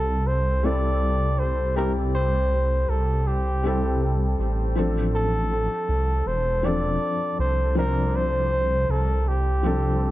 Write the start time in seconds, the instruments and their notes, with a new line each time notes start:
Already playing: detuned saw bass C2, felt piano G3 C4 E4 A4, muted trumpet A4
0.27 muted trumpet C5
0.63 felt piano G3 C4 E4 A4, muted trumpet D5
1.39 muted trumpet C5
1.75 felt piano G3 C4 E4 G4, muted trumpet A#4
2.15 muted trumpet C5
2.88 detuned saw bass C2, muted trumpet A4
3.27 muted trumpet G4
3.63 felt piano G3 C4 E4 A4
4.38 detuned saw bass A1
4.75 felt piano F3 C4 D4 A4
5.15 muted trumpet A4
5.88 detuned saw bass C2
6.26 detuned saw bass E1, muted trumpet C5
6.63 felt piano F3 C4 D4 A4, muted trumpet D5
7.38 detuned saw bass C2, muted trumpet C5
7.75 felt piano F3 C4 D4 C5, muted trumpet A#4
8.16 muted trumpet C5
8.89 detuned saw bass C2, muted trumpet A4
9.28 muted trumpet G4
9.63 felt piano F3 C4 D4 A4